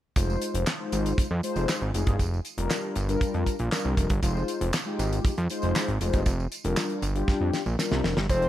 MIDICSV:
0, 0, Header, 1, 5, 480
1, 0, Start_track
1, 0, Tempo, 508475
1, 150, Time_signature, 4, 2, 24, 8
1, 8013, End_track
2, 0, Start_track
2, 0, Title_t, "Analog synth lead"
2, 0, Program_c, 0, 81
2, 7834, Note_on_c, 0, 72, 94
2, 8013, Note_off_c, 0, 72, 0
2, 8013, End_track
3, 0, Start_track
3, 0, Title_t, "Analog polysynth"
3, 0, Program_c, 1, 90
3, 149, Note_on_c, 1, 56, 78
3, 152, Note_on_c, 1, 63, 67
3, 155, Note_on_c, 1, 65, 71
3, 157, Note_on_c, 1, 72, 100
3, 594, Note_off_c, 1, 56, 0
3, 596, Note_off_c, 1, 63, 0
3, 597, Note_off_c, 1, 65, 0
3, 598, Note_off_c, 1, 72, 0
3, 749, Note_on_c, 1, 56, 79
3, 751, Note_on_c, 1, 63, 80
3, 754, Note_on_c, 1, 65, 71
3, 756, Note_on_c, 1, 72, 90
3, 1194, Note_off_c, 1, 56, 0
3, 1195, Note_off_c, 1, 63, 0
3, 1197, Note_off_c, 1, 65, 0
3, 1198, Note_off_c, 1, 72, 0
3, 1347, Note_on_c, 1, 56, 105
3, 1349, Note_on_c, 1, 63, 83
3, 1352, Note_on_c, 1, 65, 81
3, 1355, Note_on_c, 1, 72, 112
3, 1704, Note_off_c, 1, 56, 0
3, 1706, Note_off_c, 1, 63, 0
3, 1707, Note_off_c, 1, 65, 0
3, 1708, Note_off_c, 1, 72, 0
3, 1827, Note_on_c, 1, 56, 89
3, 1829, Note_on_c, 1, 63, 84
3, 1833, Note_on_c, 1, 65, 84
3, 1833, Note_on_c, 1, 68, 100
3, 2069, Note_off_c, 1, 56, 0
3, 2070, Note_off_c, 1, 63, 0
3, 2072, Note_off_c, 1, 65, 0
3, 2072, Note_off_c, 1, 68, 0
3, 2427, Note_on_c, 1, 55, 86
3, 2429, Note_on_c, 1, 62, 74
3, 2433, Note_on_c, 1, 65, 75
3, 2434, Note_on_c, 1, 70, 102
3, 2785, Note_off_c, 1, 55, 0
3, 2785, Note_off_c, 1, 62, 0
3, 2787, Note_off_c, 1, 65, 0
3, 2788, Note_off_c, 1, 70, 0
3, 2909, Note_on_c, 1, 55, 92
3, 2912, Note_on_c, 1, 62, 86
3, 2912, Note_on_c, 1, 65, 80
3, 2918, Note_on_c, 1, 70, 107
3, 3354, Note_off_c, 1, 55, 0
3, 3355, Note_off_c, 1, 62, 0
3, 3356, Note_off_c, 1, 65, 0
3, 3359, Note_off_c, 1, 70, 0
3, 3505, Note_on_c, 1, 55, 73
3, 3508, Note_on_c, 1, 62, 77
3, 3509, Note_on_c, 1, 65, 76
3, 3512, Note_on_c, 1, 70, 94
3, 3863, Note_off_c, 1, 55, 0
3, 3865, Note_off_c, 1, 62, 0
3, 3865, Note_off_c, 1, 65, 0
3, 3867, Note_off_c, 1, 70, 0
3, 3985, Note_on_c, 1, 56, 80
3, 3988, Note_on_c, 1, 63, 75
3, 3991, Note_on_c, 1, 65, 83
3, 3993, Note_on_c, 1, 72, 100
3, 4432, Note_off_c, 1, 56, 0
3, 4434, Note_off_c, 1, 63, 0
3, 4435, Note_off_c, 1, 65, 0
3, 4436, Note_off_c, 1, 72, 0
3, 4583, Note_on_c, 1, 56, 90
3, 4587, Note_on_c, 1, 63, 80
3, 4588, Note_on_c, 1, 65, 74
3, 4591, Note_on_c, 1, 67, 97
3, 5031, Note_off_c, 1, 56, 0
3, 5033, Note_off_c, 1, 63, 0
3, 5034, Note_off_c, 1, 65, 0
3, 5035, Note_off_c, 1, 67, 0
3, 5188, Note_on_c, 1, 56, 99
3, 5193, Note_on_c, 1, 63, 86
3, 5195, Note_on_c, 1, 65, 83
3, 5197, Note_on_c, 1, 72, 111
3, 5545, Note_off_c, 1, 56, 0
3, 5547, Note_off_c, 1, 63, 0
3, 5548, Note_off_c, 1, 65, 0
3, 5549, Note_off_c, 1, 72, 0
3, 5665, Note_on_c, 1, 56, 91
3, 5668, Note_on_c, 1, 63, 76
3, 5673, Note_on_c, 1, 65, 85
3, 5674, Note_on_c, 1, 72, 93
3, 5908, Note_off_c, 1, 56, 0
3, 5909, Note_off_c, 1, 63, 0
3, 5912, Note_off_c, 1, 65, 0
3, 5912, Note_off_c, 1, 72, 0
3, 6267, Note_on_c, 1, 55, 84
3, 6268, Note_on_c, 1, 62, 81
3, 6271, Note_on_c, 1, 65, 77
3, 6272, Note_on_c, 1, 70, 92
3, 6624, Note_off_c, 1, 55, 0
3, 6625, Note_off_c, 1, 62, 0
3, 6626, Note_off_c, 1, 65, 0
3, 6627, Note_off_c, 1, 70, 0
3, 6745, Note_on_c, 1, 55, 97
3, 6747, Note_on_c, 1, 62, 86
3, 6752, Note_on_c, 1, 65, 94
3, 6754, Note_on_c, 1, 67, 101
3, 7192, Note_off_c, 1, 55, 0
3, 7193, Note_off_c, 1, 62, 0
3, 7196, Note_off_c, 1, 65, 0
3, 7197, Note_off_c, 1, 67, 0
3, 7349, Note_on_c, 1, 55, 80
3, 7352, Note_on_c, 1, 62, 83
3, 7354, Note_on_c, 1, 65, 75
3, 7358, Note_on_c, 1, 70, 89
3, 7705, Note_off_c, 1, 55, 0
3, 7707, Note_off_c, 1, 62, 0
3, 7708, Note_off_c, 1, 65, 0
3, 7710, Note_off_c, 1, 70, 0
3, 7827, Note_on_c, 1, 56, 75
3, 7830, Note_on_c, 1, 63, 68
3, 7833, Note_on_c, 1, 65, 69
3, 7836, Note_on_c, 1, 72, 75
3, 8013, Note_off_c, 1, 56, 0
3, 8013, Note_off_c, 1, 63, 0
3, 8013, Note_off_c, 1, 65, 0
3, 8013, Note_off_c, 1, 72, 0
3, 8013, End_track
4, 0, Start_track
4, 0, Title_t, "Analog synth bass"
4, 0, Program_c, 2, 38
4, 154, Note_on_c, 2, 29, 100
4, 350, Note_off_c, 2, 29, 0
4, 513, Note_on_c, 2, 29, 86
4, 610, Note_off_c, 2, 29, 0
4, 874, Note_on_c, 2, 32, 90
4, 1070, Note_off_c, 2, 32, 0
4, 1115, Note_on_c, 2, 41, 48
4, 1162, Note_off_c, 2, 41, 0
4, 1235, Note_on_c, 2, 41, 101
4, 1332, Note_off_c, 2, 41, 0
4, 1472, Note_on_c, 2, 29, 84
4, 1570, Note_off_c, 2, 29, 0
4, 1713, Note_on_c, 2, 32, 90
4, 1811, Note_off_c, 2, 32, 0
4, 1833, Note_on_c, 2, 29, 80
4, 1931, Note_off_c, 2, 29, 0
4, 1954, Note_on_c, 2, 31, 81
4, 2051, Note_off_c, 2, 31, 0
4, 2071, Note_on_c, 2, 29, 91
4, 2268, Note_off_c, 2, 29, 0
4, 2433, Note_on_c, 2, 29, 93
4, 2531, Note_off_c, 2, 29, 0
4, 2793, Note_on_c, 2, 31, 102
4, 2989, Note_off_c, 2, 31, 0
4, 3031, Note_on_c, 2, 41, 47
4, 3079, Note_off_c, 2, 41, 0
4, 3156, Note_on_c, 2, 41, 79
4, 3252, Note_off_c, 2, 41, 0
4, 3395, Note_on_c, 2, 34, 86
4, 3491, Note_off_c, 2, 34, 0
4, 3635, Note_on_c, 2, 36, 92
4, 3732, Note_off_c, 2, 36, 0
4, 3751, Note_on_c, 2, 29, 85
4, 3849, Note_off_c, 2, 29, 0
4, 3873, Note_on_c, 2, 31, 93
4, 3971, Note_off_c, 2, 31, 0
4, 3992, Note_on_c, 2, 29, 96
4, 4189, Note_off_c, 2, 29, 0
4, 4352, Note_on_c, 2, 29, 100
4, 4450, Note_off_c, 2, 29, 0
4, 4711, Note_on_c, 2, 32, 95
4, 4908, Note_off_c, 2, 32, 0
4, 4953, Note_on_c, 2, 41, 50
4, 5000, Note_off_c, 2, 41, 0
4, 5076, Note_on_c, 2, 41, 100
4, 5173, Note_off_c, 2, 41, 0
4, 5318, Note_on_c, 2, 29, 100
4, 5413, Note_off_c, 2, 29, 0
4, 5555, Note_on_c, 2, 32, 93
4, 5652, Note_off_c, 2, 32, 0
4, 5674, Note_on_c, 2, 29, 75
4, 5771, Note_off_c, 2, 29, 0
4, 5794, Note_on_c, 2, 31, 84
4, 5891, Note_off_c, 2, 31, 0
4, 5911, Note_on_c, 2, 29, 104
4, 6108, Note_off_c, 2, 29, 0
4, 6275, Note_on_c, 2, 29, 91
4, 6372, Note_off_c, 2, 29, 0
4, 6630, Note_on_c, 2, 31, 101
4, 6827, Note_off_c, 2, 31, 0
4, 6872, Note_on_c, 2, 41, 43
4, 6920, Note_off_c, 2, 41, 0
4, 6992, Note_on_c, 2, 41, 83
4, 7090, Note_off_c, 2, 41, 0
4, 7232, Note_on_c, 2, 34, 89
4, 7330, Note_off_c, 2, 34, 0
4, 7471, Note_on_c, 2, 36, 91
4, 7570, Note_off_c, 2, 36, 0
4, 7590, Note_on_c, 2, 29, 91
4, 7689, Note_off_c, 2, 29, 0
4, 7711, Note_on_c, 2, 31, 91
4, 7809, Note_off_c, 2, 31, 0
4, 7831, Note_on_c, 2, 29, 100
4, 8013, Note_off_c, 2, 29, 0
4, 8013, End_track
5, 0, Start_track
5, 0, Title_t, "Drums"
5, 150, Note_on_c, 9, 54, 54
5, 152, Note_on_c, 9, 36, 86
5, 154, Note_on_c, 9, 42, 74
5, 245, Note_off_c, 9, 54, 0
5, 247, Note_off_c, 9, 36, 0
5, 248, Note_off_c, 9, 42, 0
5, 282, Note_on_c, 9, 54, 31
5, 376, Note_off_c, 9, 54, 0
5, 392, Note_on_c, 9, 42, 68
5, 395, Note_on_c, 9, 54, 55
5, 486, Note_off_c, 9, 42, 0
5, 490, Note_off_c, 9, 54, 0
5, 515, Note_on_c, 9, 42, 62
5, 609, Note_off_c, 9, 42, 0
5, 627, Note_on_c, 9, 54, 96
5, 635, Note_on_c, 9, 38, 100
5, 635, Note_on_c, 9, 39, 79
5, 722, Note_off_c, 9, 54, 0
5, 729, Note_off_c, 9, 38, 0
5, 729, Note_off_c, 9, 39, 0
5, 872, Note_on_c, 9, 42, 65
5, 875, Note_on_c, 9, 54, 55
5, 967, Note_off_c, 9, 42, 0
5, 969, Note_off_c, 9, 54, 0
5, 999, Note_on_c, 9, 42, 55
5, 1002, Note_on_c, 9, 54, 35
5, 1094, Note_off_c, 9, 42, 0
5, 1097, Note_off_c, 9, 54, 0
5, 1114, Note_on_c, 9, 36, 115
5, 1118, Note_on_c, 9, 42, 82
5, 1124, Note_on_c, 9, 54, 48
5, 1208, Note_off_c, 9, 36, 0
5, 1213, Note_off_c, 9, 42, 0
5, 1218, Note_off_c, 9, 54, 0
5, 1353, Note_on_c, 9, 54, 46
5, 1357, Note_on_c, 9, 42, 69
5, 1447, Note_off_c, 9, 54, 0
5, 1452, Note_off_c, 9, 42, 0
5, 1470, Note_on_c, 9, 54, 30
5, 1477, Note_on_c, 9, 42, 40
5, 1564, Note_off_c, 9, 54, 0
5, 1571, Note_off_c, 9, 42, 0
5, 1595, Note_on_c, 9, 54, 88
5, 1597, Note_on_c, 9, 38, 95
5, 1598, Note_on_c, 9, 39, 70
5, 1689, Note_off_c, 9, 54, 0
5, 1692, Note_off_c, 9, 38, 0
5, 1692, Note_off_c, 9, 39, 0
5, 1835, Note_on_c, 9, 42, 73
5, 1840, Note_on_c, 9, 54, 46
5, 1930, Note_off_c, 9, 42, 0
5, 1934, Note_off_c, 9, 54, 0
5, 1951, Note_on_c, 9, 42, 56
5, 1954, Note_on_c, 9, 36, 91
5, 2046, Note_off_c, 9, 42, 0
5, 2048, Note_off_c, 9, 36, 0
5, 2071, Note_on_c, 9, 36, 91
5, 2072, Note_on_c, 9, 42, 79
5, 2074, Note_on_c, 9, 54, 55
5, 2166, Note_off_c, 9, 36, 0
5, 2167, Note_off_c, 9, 42, 0
5, 2169, Note_off_c, 9, 54, 0
5, 2206, Note_on_c, 9, 54, 30
5, 2300, Note_off_c, 9, 54, 0
5, 2310, Note_on_c, 9, 42, 66
5, 2321, Note_on_c, 9, 54, 58
5, 2405, Note_off_c, 9, 42, 0
5, 2415, Note_off_c, 9, 54, 0
5, 2434, Note_on_c, 9, 42, 65
5, 2528, Note_off_c, 9, 42, 0
5, 2554, Note_on_c, 9, 38, 96
5, 2554, Note_on_c, 9, 39, 74
5, 2554, Note_on_c, 9, 54, 101
5, 2648, Note_off_c, 9, 38, 0
5, 2649, Note_off_c, 9, 39, 0
5, 2649, Note_off_c, 9, 54, 0
5, 2790, Note_on_c, 9, 42, 69
5, 2800, Note_on_c, 9, 54, 50
5, 2884, Note_off_c, 9, 42, 0
5, 2894, Note_off_c, 9, 54, 0
5, 2916, Note_on_c, 9, 42, 56
5, 2926, Note_on_c, 9, 54, 34
5, 3010, Note_off_c, 9, 42, 0
5, 3020, Note_off_c, 9, 54, 0
5, 3031, Note_on_c, 9, 36, 118
5, 3031, Note_on_c, 9, 42, 84
5, 3047, Note_on_c, 9, 54, 49
5, 3125, Note_off_c, 9, 36, 0
5, 3126, Note_off_c, 9, 42, 0
5, 3142, Note_off_c, 9, 54, 0
5, 3154, Note_on_c, 9, 42, 27
5, 3249, Note_off_c, 9, 42, 0
5, 3270, Note_on_c, 9, 36, 71
5, 3273, Note_on_c, 9, 42, 78
5, 3277, Note_on_c, 9, 54, 54
5, 3365, Note_off_c, 9, 36, 0
5, 3367, Note_off_c, 9, 42, 0
5, 3371, Note_off_c, 9, 54, 0
5, 3390, Note_on_c, 9, 42, 42
5, 3485, Note_off_c, 9, 42, 0
5, 3515, Note_on_c, 9, 38, 94
5, 3515, Note_on_c, 9, 39, 75
5, 3522, Note_on_c, 9, 54, 90
5, 3609, Note_off_c, 9, 38, 0
5, 3610, Note_off_c, 9, 39, 0
5, 3616, Note_off_c, 9, 54, 0
5, 3751, Note_on_c, 9, 36, 95
5, 3752, Note_on_c, 9, 42, 77
5, 3763, Note_on_c, 9, 54, 40
5, 3845, Note_off_c, 9, 36, 0
5, 3847, Note_off_c, 9, 42, 0
5, 3858, Note_off_c, 9, 54, 0
5, 3867, Note_on_c, 9, 42, 57
5, 3872, Note_on_c, 9, 36, 96
5, 3961, Note_off_c, 9, 42, 0
5, 3966, Note_off_c, 9, 36, 0
5, 3989, Note_on_c, 9, 42, 78
5, 3990, Note_on_c, 9, 36, 85
5, 3993, Note_on_c, 9, 54, 59
5, 4084, Note_off_c, 9, 36, 0
5, 4084, Note_off_c, 9, 42, 0
5, 4087, Note_off_c, 9, 54, 0
5, 4121, Note_on_c, 9, 54, 28
5, 4216, Note_off_c, 9, 54, 0
5, 4231, Note_on_c, 9, 42, 60
5, 4231, Note_on_c, 9, 54, 53
5, 4326, Note_off_c, 9, 42, 0
5, 4326, Note_off_c, 9, 54, 0
5, 4355, Note_on_c, 9, 42, 64
5, 4449, Note_off_c, 9, 42, 0
5, 4464, Note_on_c, 9, 54, 97
5, 4474, Note_on_c, 9, 38, 91
5, 4475, Note_on_c, 9, 39, 76
5, 4558, Note_off_c, 9, 54, 0
5, 4569, Note_off_c, 9, 38, 0
5, 4569, Note_off_c, 9, 39, 0
5, 4713, Note_on_c, 9, 54, 53
5, 4714, Note_on_c, 9, 42, 66
5, 4808, Note_off_c, 9, 42, 0
5, 4808, Note_off_c, 9, 54, 0
5, 4838, Note_on_c, 9, 54, 35
5, 4839, Note_on_c, 9, 42, 53
5, 4932, Note_off_c, 9, 54, 0
5, 4933, Note_off_c, 9, 42, 0
5, 4952, Note_on_c, 9, 36, 115
5, 4955, Note_on_c, 9, 42, 83
5, 4961, Note_on_c, 9, 54, 46
5, 5047, Note_off_c, 9, 36, 0
5, 5050, Note_off_c, 9, 42, 0
5, 5055, Note_off_c, 9, 54, 0
5, 5075, Note_on_c, 9, 42, 33
5, 5169, Note_off_c, 9, 42, 0
5, 5188, Note_on_c, 9, 54, 48
5, 5195, Note_on_c, 9, 42, 71
5, 5283, Note_off_c, 9, 54, 0
5, 5289, Note_off_c, 9, 42, 0
5, 5304, Note_on_c, 9, 54, 30
5, 5311, Note_on_c, 9, 42, 42
5, 5399, Note_off_c, 9, 54, 0
5, 5406, Note_off_c, 9, 42, 0
5, 5435, Note_on_c, 9, 54, 90
5, 5437, Note_on_c, 9, 38, 97
5, 5437, Note_on_c, 9, 39, 81
5, 5530, Note_off_c, 9, 54, 0
5, 5531, Note_off_c, 9, 38, 0
5, 5532, Note_off_c, 9, 39, 0
5, 5553, Note_on_c, 9, 42, 32
5, 5647, Note_off_c, 9, 42, 0
5, 5672, Note_on_c, 9, 42, 81
5, 5678, Note_on_c, 9, 54, 43
5, 5767, Note_off_c, 9, 42, 0
5, 5772, Note_off_c, 9, 54, 0
5, 5789, Note_on_c, 9, 42, 50
5, 5793, Note_on_c, 9, 36, 89
5, 5805, Note_on_c, 9, 54, 33
5, 5884, Note_off_c, 9, 42, 0
5, 5888, Note_off_c, 9, 36, 0
5, 5900, Note_off_c, 9, 54, 0
5, 5907, Note_on_c, 9, 54, 59
5, 5911, Note_on_c, 9, 36, 90
5, 5912, Note_on_c, 9, 42, 73
5, 6002, Note_off_c, 9, 54, 0
5, 6005, Note_off_c, 9, 36, 0
5, 6006, Note_off_c, 9, 42, 0
5, 6041, Note_on_c, 9, 54, 30
5, 6135, Note_off_c, 9, 54, 0
5, 6152, Note_on_c, 9, 42, 67
5, 6156, Note_on_c, 9, 54, 57
5, 6246, Note_off_c, 9, 42, 0
5, 6250, Note_off_c, 9, 54, 0
5, 6273, Note_on_c, 9, 42, 56
5, 6368, Note_off_c, 9, 42, 0
5, 6387, Note_on_c, 9, 54, 94
5, 6392, Note_on_c, 9, 38, 100
5, 6393, Note_on_c, 9, 39, 70
5, 6481, Note_off_c, 9, 54, 0
5, 6487, Note_off_c, 9, 38, 0
5, 6487, Note_off_c, 9, 39, 0
5, 6513, Note_on_c, 9, 42, 33
5, 6607, Note_off_c, 9, 42, 0
5, 6630, Note_on_c, 9, 42, 73
5, 6635, Note_on_c, 9, 54, 55
5, 6725, Note_off_c, 9, 42, 0
5, 6729, Note_off_c, 9, 54, 0
5, 6755, Note_on_c, 9, 42, 48
5, 6849, Note_off_c, 9, 42, 0
5, 6872, Note_on_c, 9, 36, 125
5, 6874, Note_on_c, 9, 38, 60
5, 6885, Note_on_c, 9, 54, 47
5, 6966, Note_off_c, 9, 36, 0
5, 6968, Note_off_c, 9, 38, 0
5, 6979, Note_off_c, 9, 54, 0
5, 7111, Note_on_c, 9, 54, 48
5, 7113, Note_on_c, 9, 38, 70
5, 7206, Note_off_c, 9, 54, 0
5, 7207, Note_off_c, 9, 38, 0
5, 7230, Note_on_c, 9, 54, 33
5, 7325, Note_off_c, 9, 54, 0
5, 7353, Note_on_c, 9, 38, 77
5, 7358, Note_on_c, 9, 54, 92
5, 7447, Note_off_c, 9, 38, 0
5, 7452, Note_off_c, 9, 54, 0
5, 7473, Note_on_c, 9, 38, 69
5, 7568, Note_off_c, 9, 38, 0
5, 7593, Note_on_c, 9, 38, 91
5, 7604, Note_on_c, 9, 54, 42
5, 7687, Note_off_c, 9, 38, 0
5, 7698, Note_off_c, 9, 54, 0
5, 7711, Note_on_c, 9, 38, 87
5, 7806, Note_off_c, 9, 38, 0
5, 7829, Note_on_c, 9, 42, 70
5, 7830, Note_on_c, 9, 36, 86
5, 7834, Note_on_c, 9, 54, 62
5, 7924, Note_off_c, 9, 42, 0
5, 7925, Note_off_c, 9, 36, 0
5, 7928, Note_off_c, 9, 54, 0
5, 7949, Note_on_c, 9, 42, 35
5, 8013, Note_off_c, 9, 42, 0
5, 8013, End_track
0, 0, End_of_file